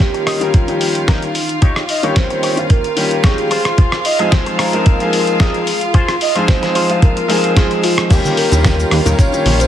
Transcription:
Already playing: D#3 G3 A#3 C#4 F4 G4 F5
0.00 G4, kick, snare, closed hi-hat
0.14 muted clean electric guitar stroke, closed hi-hat
0.26 D#4 G4 D#5, cross-stick, open hi-hat
0.41 D#3 G3 A#3 C#4 A#4, closed hi-hat
0.53 F4, muted clean electric guitar stroke, kick, closed hi-hat
0.68 D#3 G3 A#3 C#4 G4, closed hi-hat
0.81 open hi-hat
0.95 closed hi-hat
1.07 D#3 G3 A#3 C#4 D#4 G4 A#4, kick, snare, closed hi-hat
1.22 closed hi-hat
1.35 muted clean electric guitar stroke, open hi-hat
1.49 closed hi-hat
1.61 D#4 G4 C#5, kick, closed hi-hat
1.76 cross-stick
1.89 D#5, open hi-hat
2.03 D#3 G3 A#3 C#4 D#4 G4 C#5, closed hi-hat
2.16 C5, kick, snare, closed hi-hat
2.30 muted clean electric guitar stroke, closed hi-hat
2.43 D#4 G4 C#5, open hi-hat
2.57 D#3 G3 A#3 C#4 F4, closed hi-hat
2.70 A#4, muted clean electric guitar stroke, kick, closed hi-hat
2.84 closed hi-hat
2.96 D#3 G3 A#3 C#4 G4, open hi-hat
3.11 closed hi-hat
3.24 D#4 G4 G#4 C#5, kick, snare, closed hi-hat
3.38 closed hi-hat
3.51 F4 G#4 C5, open hi-hat
3.65 cross-stick, closed hi-hat
3.78 kick, closed hi-hat
3.92 cross-stick
4.05 D#5, open hi-hat
4.19 F3 G#3 C4 D#4 F4 G#4 D#5, closed hi-hat
4.32 C5, kick, snare, closed hi-hat
4.46 muted clean electric guitar stroke, closed hi-hat
4.59 F4 G#4 A#4, cross-stick, open hi-hat
4.73 F3 G#3 C4 D#4 A#4, closed hi-hat
4.79 C5
4.86 A#4, muted clean electric guitar stroke, kick, closed hi-hat
5.00 F3 G#3 C4 D#4 G#4, closed hi-hat
5.13 open hi-hat
5.27 closed hi-hat
5.40 F4 G#4 D#5, kick, snare, closed hi-hat
5.54 closed hi-hat
5.67 muted clean electric guitar stroke, open hi-hat
5.81 closed hi-hat
5.94 F4 G#4 C5, kick, closed hi-hat
6.09 cross-stick, closed hi-hat
6.21 D#5, open hi-hat
6.35 F3 G#3 C4 D#4 F4 G#4 C5, closed hi-hat
6.48 C5, kick, snare, closed hi-hat
6.62 muted clean electric guitar stroke, snare, closed hi-hat
6.75 F4 G#4 C5, open hi-hat
6.89 F3 G#3 C4 D#4 F4, closed hi-hat
7.02 A#4, muted clean electric guitar stroke, kick, closed hi-hat
7.17 closed hi-hat
7.28 F3 G#3 C4 D#4 G#4, open hi-hat
7.44 closed hi-hat
7.56 F4 G#4 C5, kick, snare, closed hi-hat
7.71 closed hi-hat
7.83 F4, muted clean electric guitar stroke, open hi-hat
7.98 cross-stick, closed hi-hat
8.10 D#2 D#3 G3 A#3 C#4 F4 G4 F5, kick, closed hi-hat, crash, tambourine, shaker
8.25 tambourine, high conga, shaker
8.37 A#4, open hi-hat
8.51 D#2 D#3 G3 A#3 C#4 G4, closed hi-hat, tambourine, shaker
8.64 kick, snare, closed hi-hat, tambourine, high conga, shaker
8.79 tambourine, shaker
8.91 D#2, cross-stick, open hi-hat
9.05 D#2 D#3 G3 A#3 C#4 A#4, closed hi-hat, tambourine, high conga, low conga, shaker
9.19 C#5, kick, closed hi-hat, tambourine, shaker
9.32 D#3 G3 A#3 C#4 G4, tambourine, shaker
9.46 A#1, open hi-hat, high conga
9.60 C5, closed hi-hat, tambourine, shaker

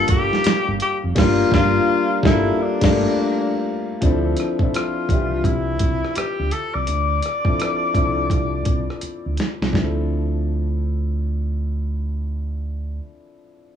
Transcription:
Already playing: G3 A#3 D4 F4 A4
0.08 G1 G4, kick, closed hi-hat
0.33 snare
0.44 finger snap, muted fingered electric bass stroke, snare, closed hi-hat
0.68 G1
0.80 G4, closed hi-hat
1.04 F1
1.15 G1 G3 A#3 D4 F4, kick, snare, crash
1.51 G1 G3 A#3 D4 F4, kick, snare
2.23 G1 G3 A#3 D4 E4 F4, kick, snare
2.27 A4
2.62 D4
2.81 G1 G3 A3 D4 F4, kick, snare, crash
2.86 A#3 A4
4.01 D2 F3 C4 D4 E4, kick, closed hi-hat
4.06 A4
4.37 cross-stick, closed hi-hat
4.59 F3 C4 D4, kick
4.64 E4 A4
4.74 F4, cross-stick, closed hi-hat
5.09 C2 E3 C4 D4 E5, kick, closed hi-hat
5.13 F3 G4
5.44 C2 E4, kick, closed hi-hat
5.79 C2, kick, closed hi-hat
6.05 cross-stick
6.16 G4, muted fingered electric bass stroke, cross-stick, closed hi-hat
6.39 D2
6.51 A4, closed hi-hat
6.75 C2 D5
6.87 D2, closed hi-hat
7.22 cross-stick, closed hi-hat
7.45 F3 C4 D4 E4, kick
7.49 A4
7.60 cross-stick, closed hi-hat
7.94 C2 F3 C4 D4 E4, kick, closed hi-hat
7.98 A4
8.30 C2, kick, closed hi-hat
8.65 C2, kick, closed hi-hat
8.90 cross-stick
9.01 muted fingered electric bass stroke, closed hi-hat
9.26 D2
9.37 snare, closed hi-hat
9.61 C2 F3, snare
9.69 C4, kick
9.74 D2 D4, snare
9.79 E4
9.84 A4

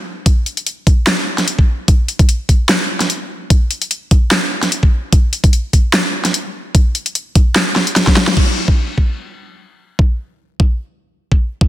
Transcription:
0.26 kick, closed hi-hat
0.46 closed hi-hat
0.57 closed hi-hat
0.67 closed hi-hat
0.87 kick, closed hi-hat
1.07 snare, clap, closed hi-hat
1.38 snare, closed hi-hat
1.48 closed hi-hat
1.59 kick
1.88 kick, closed hi-hat
2.08 closed hi-hat
2.19 kick, closed hi-hat
2.29 closed hi-hat
2.49 kick, closed hi-hat
2.69 snare, clap, closed hi-hat
3.00 snare, closed hi-hat
3.10 closed hi-hat
3.50 kick, closed hi-hat
3.71 closed hi-hat
3.82 closed hi-hat
3.91 closed hi-hat
4.11 kick, closed hi-hat
4.31 snare, clap, closed hi-hat
4.63 snare, closed hi-hat
4.72 closed hi-hat
4.83 kick
5.12 kick, closed hi-hat
5.33 closed hi-hat
5.44 kick, closed hi-hat
5.53 closed hi-hat
5.73 kick, closed hi-hat
5.94 snare, clap, closed hi-hat
6.25 snare, closed hi-hat
6.34 closed hi-hat
6.75 kick, closed hi-hat
6.95 closed hi-hat
7.06 closed hi-hat
7.15 closed hi-hat
7.35 kick, closed hi-hat
7.56 snare, clap, closed hi-hat
7.76 snare
7.87 closed hi-hat
7.96 snare, closed hi-hat
8.07 kick, snare
8.17 snare
8.28 snare
8.37 kick, crash
8.68 kick
8.98 kick
9.99 kick
10.60 kick
11.32 kick
11.61 kick

